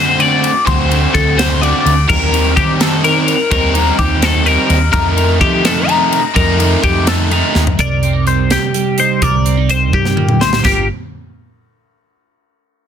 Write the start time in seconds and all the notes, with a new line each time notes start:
Already playing: D3 A3 C4 F#4 C5
0.19 D3 A3 C4 F#4 D5, ride
0.44 ride
0.66 D2 D3 A3 C4 F#4 C5, kick, ride
0.90 D3 A3 C4 F#4, ride
1.14 D2 D3 A3 C4 F#4 A4, kick, ride
1.37 D3 A3 C4 F#4 C5, snare, ride
1.61 D3 A3 C4 F#4 D5, ride
1.85 D2, ride
2.08 D#2 D#3 G3 C4 D#4 A#4, kick, crash
2.32 D#3 G3 C4 D#4, ride
2.56 D#3 G3 C4 D#4 G4, kick, ride
2.79 D#3 G3 C4 D#4 A4, snare, ride
3.03 D#3 G3 C4 D#4 A#4, ride
3.28 ride
3.51 D#2 D#3 G3 C4 D#4 A#4, kick, ride
3.74 D#3 G3 C4 D#4, ride
3.99 D#2 D#3 G3 C4 D#4 G4, kick, ride
4.21 D#3 G3 C4 D#4 A4, snare, ride
4.44 D#3 G3 C4 D#4 A#4, ride
4.70 D#2, ride
4.92 F2 C3 D#3 A3 D#4 A#4, kick, ride
5.16 C3 D#3 A3 D#4, ride
5.39 C3 D#3 F3 A3 D#4 G4, kick, ride
5.63 C3 D#3 A3 D#4 A4, snare, ride
5.87 C3 D#3 A3 D#4 A#5, ride
6.13 ride
6.35 F2 C3 D#3 A3 D#4 A#4, kick, ride
6.59 C3 D#3 A3 D#4, ride
6.83 F2 C3 D#3 A3 D#4 G4, kick, ride
7.06 C3 D#3 A3 D#4 A4, snare, ride
7.30 C3 D#3 A3 D#4 A#5, ride
7.55 D#2, snare
7.67 floor tom
7.79 C2 C3 A#4 D5, kick, closed hi-hat
8.03 C4, closed hi-hat
8.13 D#4
8.26 G3 C5, closed hi-hat
8.50 G4, snare, closed hi-hat
8.74 G3, closed hi-hat
8.98 D#4 C5, closed hi-hat
9.22 C2 C3 A#4 D5, kick, closed hi-hat
9.45 C4, closed hi-hat
9.57 D#4
9.69 G3 C5, closed hi-hat
9.93 G2 C3 G4, kick, high tom
10.05 snare
10.16 A#2, mid tom
10.29 mid tom
10.40 C2 A2 C5, snare
10.53 snare
10.63 G1 G2 G3 F4 G4 A#4, kick, snare, splash